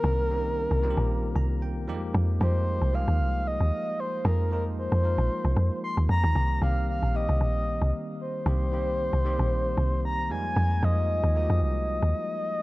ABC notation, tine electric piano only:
X:1
M:4/4
L:1/8
Q:"Swing 16ths" 1/4=114
K:Fm
V:1 name="Tine electric piano"
z4 z b g2 | z8 | z8 | z8 |
z8 | z8 |]
V:2 name="Tine electric piano"
[E,G,B,CB] [E,G,B,CDE]2 [E,G,B,CFG]3 z [F,G,A,B,EG]- | [F,G,A,B,EG] [F,G,A,B,EG]2 [F,A,B,EA]3 z2 | [F,A,B,EA] [F,A,B,EF]2 [F,A,B,EB]3 z2 | [E,G,B,CG] [E,G,B,CG]2 [E,G,B,CG]3 z2 |
[E,G,B,CG] [E,G,B,CG]2 [E,G,B,CG]3 z [F,G,A,B,E]- | [F,G,A,B,E] [F,A,B,EF]2 [F,A,B,E_G=G]3 z2 |]